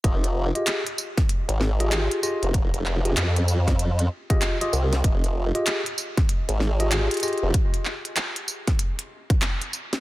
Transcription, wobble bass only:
X:1
M:4/4
L:1/16
Q:"Swing 16ths" 1/4=96
K:Fm
V:1 name="Wobble bass" clef=bass
F,,,3 z6 A,,,4 z2 F,,,- | F,,, F,,,3 F,,6 z4 C,,2 | F,,,3 z6 A,,,4 z2 F,,, | z16 |]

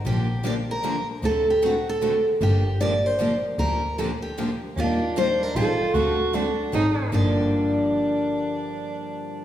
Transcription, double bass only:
X:1
M:3/4
L:1/8
Q:"Swing" 1/4=153
K:Gm
V:1 name="Double bass" clef=bass
B,,,6 | D,,6 | G,,,6 | D,,6 |
E,,4 A,,,2 | D,,4 _A,,,2 | G,,,6- | G,,,6 |]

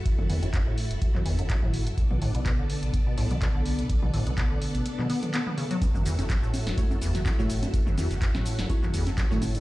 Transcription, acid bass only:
X:1
M:4/4
L:1/16
Q:"Swing 16ths" 1/4=125
K:F#m
V:1 name="Acid bass" clef=bass
z F,, E,, F,, F,, A,,2 F,, z F,, E,, F,, F,, A,,2 F,, | z B,, A,, B,, B,, D,2 B,, z B,, A,, B,, B,, D,2 B,, | z B,, A,, B,, B,, D,2 B,, z B,, B, z B, B, C, F, | z F,, E,, F,, F,, A,,2 F,, z F,, E,, F,, F,, A,,2 F,, |
z F,, E,, F,, F,, A,,2 F,, z F,, E,, F,, F,, A,,2 F,, |]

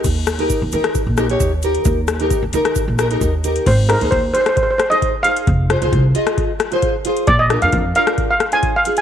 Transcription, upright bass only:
X:1
M:4/4
L:1/16
Q:1/4=133
K:Ebmix
V:1 name="Upright bass" clef=bass
E,,4- E,, E,, E,3 B,,,3 E,,4 | E,,4- E,, E,, E,3 B,,,3 E,,4 | A,,,3 E,, E,,2 z8 z2 | F,,,3 C,, C,,2 z8 z2 |
B,,,3 F,, F,,2 z8 z2 |]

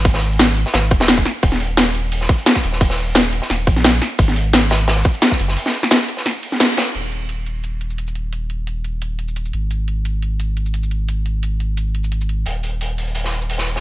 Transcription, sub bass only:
X:1
M:4/4
L:1/8
Q:1/4=174
K:D#m
V:1 name="Sub bass" clef=bass
G,,,3 z G,,, D,,,2 z | D,,,4- D,,, z2 D,,,- | D,,,3 z D,,, A,,,2 z | G,,,4- G,,, z2 F,,, |
z8 | D,,,8- | D,,,6- D,,, G,,,- | G,,,8- |
G,,,8 | D,,,8 |]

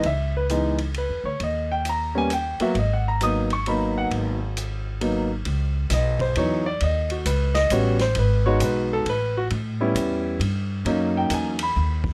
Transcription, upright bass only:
X:1
M:3/4
L:1/8
Q:"Swing" 1/4=133
K:G#m
V:1 name="Upright bass" clef=bass
C,,4- (3C,, E,, =D,, | D,,4- D,, z | G,,,6 | G,,,6 |
[K:C#m] C,,2 B,,,2 E,,2 | D,,2 C,,2 A,,,2 | G,,,2 B,,,2 A,,,2 | A,,2 E,,2 =G,,2 |
F,,2 E,,2 D,,2 |]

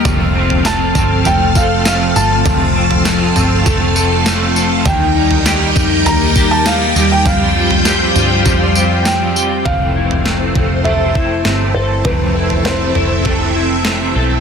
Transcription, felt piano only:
X:1
M:4/4
L:1/16
Q:1/4=100
K:Fmix
V:1 name="Felt piano"
z4 a4 g2 f2 f2 a2- | a8- a2 z6 | g8 b3 a f3 g | f12 g4 |
[K:Flyd] f8 e6 c2 | B4 c4 z8 |]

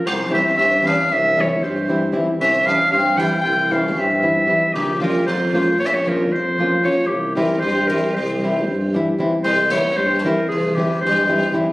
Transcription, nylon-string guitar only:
X:1
M:9/8
L:1/8
Q:3/8=77
K:none
V:1 name="Nylon-string guitar"
z [E,G,CE] z [E,G,CE] z [E,G,CE] z [E,G,CE] [E,G,CE] | z [E,G,CE] z [E,G,CE] z [E,G,CE] z [E,G,CE] [E,G,CE] | z [F,_B,_DF] z [F,B,DF] z [F,B,DF] z [F,B,DF] [F,B,DF] | z [E,G,CE] z [E,G,CE] z [E,G,CE] z [E,G,CE] [E,G,CE] |
z [E,G,CE] z [E,G,CE] z [E,G,CE] z [E,G,CE] [E,G,CE] |]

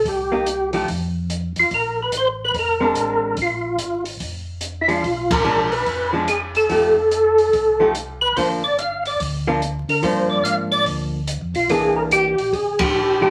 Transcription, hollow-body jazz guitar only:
X:1
M:4/4
L:1/8
Q:"Swing" 1/4=144
K:Gm
V:1 name="Hollow-body jazz guitar"
z [B,EG] z [F,A,EG] z4 | z4 z [_A,CD]3 | z6 z [F,_A,D] | z2 [F,^G,D] z2 [F,G,D] z2 |
[F,A,EG] z4 [F,A,EG] z2 | [F,B,D] z4 [F,B,D] z2 | [F,B,D]4- [F,B,D] z3 | [=E,B,D]3 z4 [F,A,_EG] |]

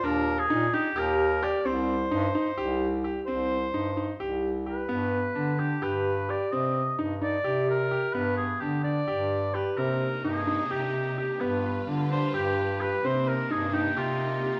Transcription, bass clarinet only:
X:1
M:7/8
L:1/8
Q:1/4=129
K:Cm
V:1 name="Bass clarinet" clef=bass
E,,2 B,, z E,,3 | C,,2 G,, z C,,3 | C,,2 G,,2 C,,3 | G,,2 D,2 G,,3 |
C,2 G,,2 C,3 | G,,2 D,2 G,,3 | C,2 G,,2 C,3 | G,,2 D,2 G,,3 |
C,2 G,,2 C,3 |]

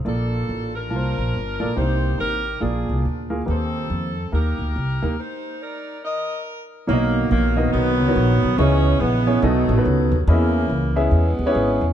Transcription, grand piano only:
X:1
M:4/4
L:1/16
Q:"Swing" 1/4=141
K:Bb
V:1 name="Grand piano"
[B,FAd]4- [B,FAd] z3 [B,FBca]4 z2 [B,FAd] z | [B,DEGc]4- [B,DEGc] z3 [B,F_Ad]4 z2 [B,FAB] z | [B,EG_c=c]4- [B,EG_c=c] z3 [B,EGB]4 z2 [B,EGB] z | z16 |
[K:B] [A,DFAcd]4 z2 [B,DFAd]3 z2 [B,DFAc]3 z2 | [B,CEGc]4 z2 [B,CEGc]2 [B,DF=Ad]2 z [B,DFAB]3 z2 | [CEGdeb]4 z2 [CEGBe]3 z2 [CE=G^GBc]3 z2 |]
V:2 name="Grand piano" clef=bass
B,,6 z8 z2 | C,6 z2 B,,6 z2 | E,6 z8 z2 | z16 |
[K:B] B,,6 z8 z2 | C,6 z2 B,,6 z2 | E,6 z8 z2 |]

